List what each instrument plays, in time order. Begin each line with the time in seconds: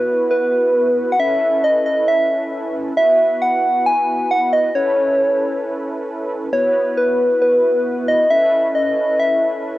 Already playing: analog polysynth B3 E4 F#4 B4, soft synth lead B4
0.31 soft synth lead B4
1.12 soft synth lead F#5
1.19 analog polysynth C#4 E4 A4 B4, soft synth lead E5
1.64 soft synth lead D#5
1.86 soft synth lead D#5
2.08 soft synth lead E5
2.97 analog polysynth B3 E4 F#4 B4, soft synth lead E5
3.42 soft synth lead F#5
3.86 soft synth lead G#5
4.31 soft synth lead F#5
4.53 soft synth lead D#5
4.75 analog polysynth C#4 E4 A4 B4, soft synth lead C#5
6.52 analog polysynth B3 E4 F#4 B4, soft synth lead C#5
6.97 soft synth lead B4
7.42 soft synth lead B4
8.08 soft synth lead D#5
8.30 analog polysynth C#4 E4 A4 B4, soft synth lead E5
8.75 soft synth lead D#5
9.20 soft synth lead E5